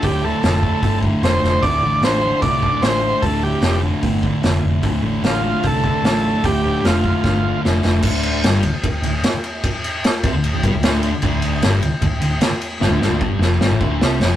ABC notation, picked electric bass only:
X:1
M:4/4
L:1/16
Q:1/4=150
K:Dm
V:1 name="Picked electric bass" clef=bass
D,,,4 F,,,4 G,,,4 F,,,2 F,,,2 | D,,,2 A,,,2 A,,,4 C,,4 A,,,4 | D,,,4 F,,,4 G,,,4 F,,,2 F,,,2 | D,,,2 A,,,2 A,,,4 C,,4 A,,,4 |
D,,,4 F,,,4 G,,,4 F,,,2 F,,,2 | D,,,4 G,,,2 D,,, z D,,,2 D,,,2 z4 | z6 C,, D,,,2 D,,, G,,, D,,, D,,,3 z | D,,,4 G,,,2 D,,, z D,,,2 D,,,2 z4 |
G,,, D,,, G,,, D,,, G,,,2 F,,,2 G,,, A,,, D,,,2 C,,2 F,,,2 |]